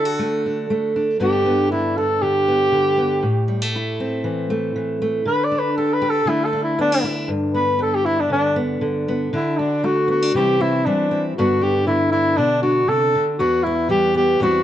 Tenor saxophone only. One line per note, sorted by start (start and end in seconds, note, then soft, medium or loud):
0.00 0.67 A4 medium
1.21 1.70 G4 medium
1.71 1.99 E4 medium
1.97 2.24 A4 medium
2.22 3.70 G4 loud
5.27 5.46 B4 loud
5.44 5.60 D5 medium
5.59 5.76 B4 medium
5.77 5.95 A4 medium
5.93 6.11 B4 medium
6.10 6.30 A4 medium
6.29 6.46 E4 medium
6.45 6.61 A4 medium
6.63 6.79 E4 medium
6.81 7.04 D4 medium
7.54 7.79 B4 medium
7.82 7.96 A4 medium
7.95 8.07 G4 medium
8.05 8.22 E4 medium
8.20 8.31 D4 medium
8.32 8.56 D4 loud
9.34 9.59 E4 medium
9.58 9.86 D4 medium
9.85 10.09 F#4 medium
10.10 10.37 F#4 medium
10.36 10.63 G4 medium
10.61 10.87 E4 medium
10.85 11.23 D4 medium
11.36 11.64 F#4 medium
11.63 11.86 G4 medium
11.87 12.10 E4 medium
12.11 12.38 E4 medium
12.37 12.62 D4 medium
12.62 12.90 F#4 medium
12.89 13.27 A4 loud
13.39 13.65 F#4 medium
13.63 13.89 E4 medium
13.91 14.14 G4 loud
14.16 14.40 G4 loud
14.42 14.63 F#4 loud